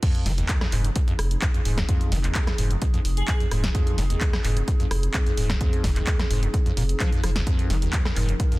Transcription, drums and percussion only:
0.03 kick, closed hi-hat, crash
0.15 closed hi-hat
0.26 snare, open hi-hat
0.38 closed hi-hat
0.49 kick, clap, closed hi-hat
0.61 cross-stick, snare
0.72 clap, open hi-hat
0.84 closed hi-hat
0.96 kick, closed hi-hat
1.08 closed hi-hat
1.19 cross-stick, open hi-hat
1.31 closed hi-hat
1.42 kick, clap, closed hi-hat
1.54 closed hi-hat
1.65 open hi-hat
1.78 kick, cross-stick, snare, closed hi-hat
1.89 kick, closed hi-hat
2.01 closed hi-hat
2.12 snare, open hi-hat
2.24 clap, closed hi-hat
2.35 kick, clap, closed hi-hat
2.47 cross-stick, snare, closed hi-hat
2.58 open hi-hat
2.71 closed hi-hat
2.82 kick, closed hi-hat
2.94 closed hi-hat
3.05 open hi-hat
3.17 closed hi-hat
3.28 kick, clap, closed hi-hat
3.40 closed hi-hat
3.51 cross-stick, open hi-hat
3.64 kick, snare, closed hi-hat
3.75 kick, closed hi-hat
3.87 closed hi-hat
3.98 snare, open hi-hat
4.10 closed hi-hat
4.21 kick, clap, closed hi-hat
4.33 cross-stick, snare
4.44 clap, open hi-hat
4.57 closed hi-hat
4.68 kick, closed hi-hat
4.80 closed hi-hat
4.91 cross-stick, open hi-hat
5.03 closed hi-hat
5.14 kick, clap, closed hi-hat
5.26 closed hi-hat
5.37 open hi-hat
5.50 kick, cross-stick, snare, closed hi-hat
5.61 kick, closed hi-hat
5.73 closed hi-hat
5.84 kick, snare, open hi-hat
5.96 clap, closed hi-hat
6.07 kick, clap, closed hi-hat
6.19 cross-stick, snare, closed hi-hat
6.31 open hi-hat
6.43 closed hi-hat
6.54 kick, closed hi-hat
6.66 closed hi-hat
6.77 open hi-hat
6.89 closed hi-hat
7.00 kick, clap, closed hi-hat
7.12 closed hi-hat
7.24 cross-stick, open hi-hat
7.36 kick, snare, closed hi-hat
7.47 kick, closed hi-hat
7.59 closed hi-hat
7.70 snare, open hi-hat
7.82 closed hi-hat
7.93 kick, clap, closed hi-hat
8.05 cross-stick, snare
8.16 clap, open hi-hat
8.29 closed hi-hat
8.40 kick, closed hi-hat
8.52 closed hi-hat

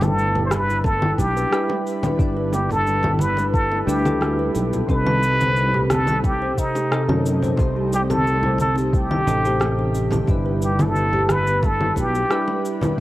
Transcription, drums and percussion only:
0.01 high bongo, high conga, low conga, cabasa
0.18 cabasa
0.35 high bongo, low conga
0.51 cross-stick, high conga, cabasa
0.70 cabasa
0.84 kick, high bongo, cabasa
1.02 low conga
1.18 kick, high bongo, cabasa
1.37 cabasa
1.53 cross-stick, cabasa
1.69 high bongo
1.87 cabasa
2.03 high bongo, low conga, cabasa
2.19 kick, cabasa
2.53 high bongo, cabasa
2.69 high conga, low conga, cabasa
2.87 high bongo, cabasa
3.03 low conga
3.19 high conga, cabasa
3.37 high bongo, cabasa
3.54 kick, cabasa
3.72 high bongo
3.89 cabasa
4.06 low conga, cabasa
4.21 cross-stick, high bongo, cabasa
4.55 high bongo, cabasa
4.73 low conga, cabasa
4.89 kick, cabasa
5.07 high bongo, low conga
5.23 cabasa
5.41 high bongo, high conga, low conga, cabasa
5.57 cabasa
5.75 low conga
5.90 cross-stick, high bongo, high conga, cabasa
6.07 low conga, cabasa
6.24 kick, high bongo, cabasa
6.58 kick, cabasa
6.75 high bongo, cabasa
6.92 cross-stick, cabasa
7.09 high bongo, low conga
7.26 cabasa
7.42 low conga, cabasa
7.57 kick, high bongo, cabasa
7.93 high bongo, cabasa
8.10 high conga, low conga, cabasa
8.27 cabasa
8.43 high bongo, low conga
8.58 high conga, cabasa
8.76 high bongo, cabasa
8.93 kick, cabasa
9.11 low conga
9.27 high bongo, cabasa
9.45 cabasa
9.60 cross-stick, high bongo, cabasa
9.95 cabasa
10.11 high bongo, low conga, cabasa
10.28 kick, high bongo, cabasa
10.62 cabasa
10.79 high bongo, high conga, low conga, cabasa
10.96 cabasa
11.13 high bongo, low conga
11.29 cross-stick, high conga, cabasa
11.47 cabasa
11.63 kick, high bongo, cabasa
11.81 low conga
11.96 kick, high bongo, cabasa
12.15 cabasa
12.31 cross-stick, cabasa
12.48 high bongo
12.65 cabasa
12.81 high bongo, low conga, cabasa

